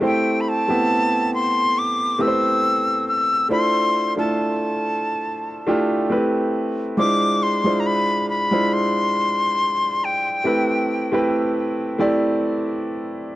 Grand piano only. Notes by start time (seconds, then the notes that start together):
0.01 A3 C4 E4 G4 C5
0.68 A3 B3 C4 E4 G4
2.19 A3 C4 E4 G4 B4
2.28 C5
3.49 A3 D4 E4 F4 C5
4.16 A3 D4 E4 F4 A4
5.67 A3 D4 E4 F4 G4
6.10 A3 C4 E4 G4 B4
6.97 G#3 D4 E4 F4 C5
7.64 G#3 D4 E4 F4 C5
8.51 G#3 D4 E4 F4 C5
10.44 A3 C4 E4 G4 B4
11.11 A3 C4 E4 G4 B4
11.98 A3 C4 E4 G4 D5